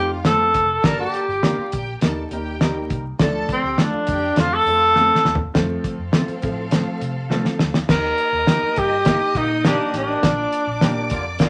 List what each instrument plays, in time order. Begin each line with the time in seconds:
Already playing: fingered electric bass F2, upright piano F3 A3 C4 D#4, violin section F4 F5, tenor saxophone G4
0.24 upright piano F3 A3 C4 A4, clean electric guitar A3 C4 F4 A4, tenor saxophone A4, snare, closed hi-hat
0.54 fingered electric bass F1, kick, snare, closed hi-hat
0.83 fingered electric bass G1, upright piano G3 A#3 D4 A#4, violin section A4 A5, tenor saxophone A#4, kick, snare, closed hi-hat
1.00 tenor saxophone G4
1.14 closed hi-hat
1.28 fingered electric bass G1, violin section G4 G5
1.43 upright piano G3 A#3 D4 A#4, clean electric guitar A#3 D4 G4 A#4, violin section F4 F5, snare, closed hi-hat
1.58 muted fingered electric bass stroke
1.72 fingered electric bass A#1, violin section G4 G5, kick, closed hi-hat
2.01 fingered electric bass D#2, upright piano G3 A#3 D#4 A#4, violin section A4 A5, snare, closed hi-hat
2.30 fingered electric bass D#2, upright piano G3 A#3 D#4 A#4, violin section G4 G5, closed hi-hat
2.61 upright piano G3 A#3 D#4 A#4, clean electric guitar A#3 D#4 G4 A#4, snare, closed hi-hat
2.90 fingered electric bass C2, kick, closed hi-hat
3.19 fingered electric bass D2, upright piano F3 A3 D4 A4, violin section A4 A5, kick, snare, closed hi-hat
3.49 tenor saxophone C4, kick, closed hi-hat
3.63 fingered electric bass D2, violin section G4 G5
3.78 upright piano F3 A3 D4 A4, clean electric guitar A3 D4 F4 A4, violin section F4 F5, snare, closed hi-hat
3.82 tenor saxophone D4
3.93 muted fingered electric bass stroke
4.07 fingered electric bass F2, violin section G4 G5, kick, closed hi-hat
4.36 fingered electric bass F2, upright piano F3 A3 C4 A4, tenor saxophone F4, violin section A4 A5, snare, closed hi-hat
4.54 tenor saxophone A4
4.66 fingered electric bass F2, upright piano F3 A3 C4 A4, violin section F4 F5, closed hi-hat
4.96 upright piano F3 A3 C4 A4, clean electric guitar A3 C4 F4 A4, snare
5.15 snare
5.25 fingered electric bass D#2, snare
5.35 floor tom
5.54 fingered electric bass F2, upright piano F3 A3 C4 A4, violin section C4 A4 F5, kick, snare, closed hi-hat
5.84 kick, closed hi-hat
5.99 fingered electric bass F2
6.12 upright piano F3 A3 C4 A4, clean electric guitar A3 C4 F4 A4, snare, closed hi-hat
6.28 muted fingered electric bass stroke, closed hi-hat
6.42 fingered electric bass A2, upright piano F3 A3 C4 A4, kick, closed hi-hat
6.71 upright piano F3 A3 C4 A4, snare, closed hi-hat
7.01 fingered electric bass C3, closed hi-hat
7.30 upright piano F3 A3 C4 A4, clean electric guitar A3 C4 F4 A4, snare
7.45 snare
7.59 fingered electric bass D2, snare
7.74 snare
7.88 fingered electric bass D#2, upright piano A#3 D#4 G4, tenor saxophone A#4, violin section D#5 D#6, kick, snare, crash
8.18 closed hi-hat
8.33 fingered electric bass D#2
8.47 clean electric guitar A#3 D#4 G4 A#4, upright piano A#3 D#4 G4, snare, closed hi-hat
8.62 muted fingered electric bass stroke
8.76 fingered electric bass G2, horn section D#3 A#3 G4, tenor saxophone G4, kick, closed hi-hat
9.05 horn section D#3 A#3 G4, upright piano A#3 D#4 G4, kick, snare, closed hi-hat
9.35 fingered electric bass A#2, horn section D#3 A#3 G4, tenor saxophone D#4, kick, closed hi-hat
9.64 horn section D#3 A#3 G4, clean electric guitar A#3 D#4 G4 A#4, upright piano A#3 D#4 G4, tenor saxophone D4, snare, closed hi-hat
9.94 fingered electric bass A1, tenor saxophone D4, snare, closed hi-hat
10.23 fingered electric bass A#1, upright piano A#3 D4 F4, violin section D5 D6, kick, snare, closed hi-hat
10.52 closed hi-hat
10.67 fingered electric bass A#1
10.81 fingered electric bass A#2, clean electric guitar A#3 D4 F4 A#4, upright piano A#3 D4 G4, snare, closed hi-hat
11.10 fingered electric bass F2, horn section D3 A#3 F4, kick, closed hi-hat
11.39 horn section D3 A#3 F4, upright piano A#3 D4 F4, kick, snare, closed hi-hat